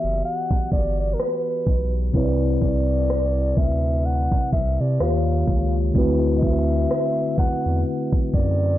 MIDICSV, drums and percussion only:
0, 0, Header, 1, 2, 480
1, 0, Start_track
1, 0, Tempo, 952381
1, 1080, Time_signature, 4, 2, 24, 8
1, 4427, End_track
2, 0, Start_track
2, 0, Title_t, "Drums"
2, 119, Note_on_c, 9, 42, 81
2, 170, Note_off_c, 9, 42, 0
2, 255, Note_on_c, 9, 36, 94
2, 306, Note_off_c, 9, 36, 0
2, 361, Note_on_c, 9, 36, 76
2, 364, Note_on_c, 9, 42, 69
2, 412, Note_off_c, 9, 36, 0
2, 415, Note_off_c, 9, 42, 0
2, 601, Note_on_c, 9, 42, 67
2, 603, Note_on_c, 9, 37, 113
2, 652, Note_off_c, 9, 42, 0
2, 653, Note_off_c, 9, 37, 0
2, 840, Note_on_c, 9, 36, 90
2, 841, Note_on_c, 9, 42, 63
2, 890, Note_off_c, 9, 36, 0
2, 891, Note_off_c, 9, 42, 0
2, 1079, Note_on_c, 9, 36, 99
2, 1079, Note_on_c, 9, 42, 75
2, 1130, Note_off_c, 9, 36, 0
2, 1130, Note_off_c, 9, 42, 0
2, 1319, Note_on_c, 9, 36, 83
2, 1320, Note_on_c, 9, 42, 72
2, 1369, Note_off_c, 9, 36, 0
2, 1370, Note_off_c, 9, 42, 0
2, 1558, Note_on_c, 9, 42, 66
2, 1562, Note_on_c, 9, 37, 112
2, 1608, Note_off_c, 9, 42, 0
2, 1613, Note_off_c, 9, 37, 0
2, 1799, Note_on_c, 9, 36, 100
2, 1799, Note_on_c, 9, 42, 59
2, 1850, Note_off_c, 9, 36, 0
2, 1850, Note_off_c, 9, 42, 0
2, 2039, Note_on_c, 9, 42, 78
2, 2089, Note_off_c, 9, 42, 0
2, 2175, Note_on_c, 9, 36, 94
2, 2226, Note_off_c, 9, 36, 0
2, 2281, Note_on_c, 9, 36, 82
2, 2284, Note_on_c, 9, 42, 68
2, 2332, Note_off_c, 9, 36, 0
2, 2334, Note_off_c, 9, 42, 0
2, 2521, Note_on_c, 9, 42, 68
2, 2522, Note_on_c, 9, 37, 115
2, 2571, Note_off_c, 9, 42, 0
2, 2572, Note_off_c, 9, 37, 0
2, 2759, Note_on_c, 9, 42, 64
2, 2760, Note_on_c, 9, 36, 86
2, 2810, Note_off_c, 9, 36, 0
2, 2810, Note_off_c, 9, 42, 0
2, 2998, Note_on_c, 9, 42, 75
2, 2999, Note_on_c, 9, 36, 106
2, 3049, Note_off_c, 9, 36, 0
2, 3049, Note_off_c, 9, 42, 0
2, 3239, Note_on_c, 9, 36, 85
2, 3239, Note_on_c, 9, 42, 73
2, 3289, Note_off_c, 9, 36, 0
2, 3290, Note_off_c, 9, 42, 0
2, 3477, Note_on_c, 9, 42, 65
2, 3482, Note_on_c, 9, 37, 115
2, 3527, Note_off_c, 9, 42, 0
2, 3532, Note_off_c, 9, 37, 0
2, 3719, Note_on_c, 9, 36, 96
2, 3719, Note_on_c, 9, 42, 61
2, 3769, Note_off_c, 9, 42, 0
2, 3770, Note_off_c, 9, 36, 0
2, 3958, Note_on_c, 9, 42, 83
2, 4009, Note_off_c, 9, 42, 0
2, 4095, Note_on_c, 9, 36, 96
2, 4146, Note_off_c, 9, 36, 0
2, 4202, Note_on_c, 9, 36, 84
2, 4204, Note_on_c, 9, 42, 72
2, 4252, Note_off_c, 9, 36, 0
2, 4254, Note_off_c, 9, 42, 0
2, 4427, End_track
0, 0, End_of_file